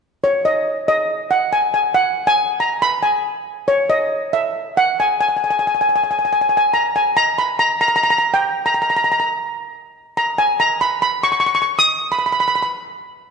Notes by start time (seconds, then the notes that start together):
0.24 C#5
0.45 D#5
0.88 D#5
1.31 F#5
1.53 G#5
1.74 G#5
1.94 F#5
2.27 G#5
2.60 A#5
2.82 B5
3.03 G#5
3.68 C#5
3.90 D#5
4.33 E5
4.77 F#5
5.00 G#5
5.21 G#5
5.29 G#5
5.37 G#5
5.44 G#5
5.51 G#5
5.59 G#5
5.67 G#5
5.75 G#5
5.81 G#5
5.89 G#5
5.96 G#5
6.04 G#5
6.11 G#5
6.19 G#5
6.25 G#5
6.33 G#5
6.41 G#5
6.49 G#5
6.57 G#5
6.74 A#5
6.96 G#5
7.17 A#5
7.38 B5
7.59 A#5
7.81 A#5
7.88 A#5
7.96 A#5
8.04 A#5
8.10 A#5
8.18 A#5
8.34 G5
8.66 A#5
8.74 A#5
8.82 A#5
8.90 A#5
8.97 A#5
9.04 A#5
9.12 A#5
9.20 A#5
10.17 A#5
10.38 G#5
10.60 A#5
10.81 B5
11.02 B5
11.23 C#6
11.32 C#6
11.40 C#6
11.46 C#6
11.55 C#6
11.62 C#6
11.79 D#6
12.12 B5
12.19 B5
12.26 B5
12.32 B5
12.40 B5
12.48 B5
12.55 B5
12.63 B5